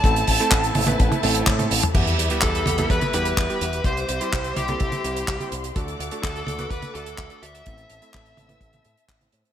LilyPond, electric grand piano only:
\new Staff \with { instrumentName = "Electric grand piano" } { \time 4/4 \key e \minor \tempo 4 = 126 <a c' e' a'>8. <a c' e' a'>4 <a c' e' b'>8. <a c' e' a'>8. <a c' e' a'>16 r8 | <g b e' g'>8. <g b e' g'>4 <g b e' a'>8. <g b e' g'>8. <g b e' g'>16 r8 | <g c' e' g'>8. <g c' e' g'>4 <g c' e' a'>8. <g c' e' g'>8. <g c' e' g'>16 r8 | <a d' fis' a'>8. <a d' fis' a'>4 <a d' fis' b'>8. <a d' fis' a'>8. <a d' fis' a'>16 r8 |
<a c' e' a'>8. <a c' e' a'>4 <a c' e' b'>8. r8. <a c' e' c''>8. | }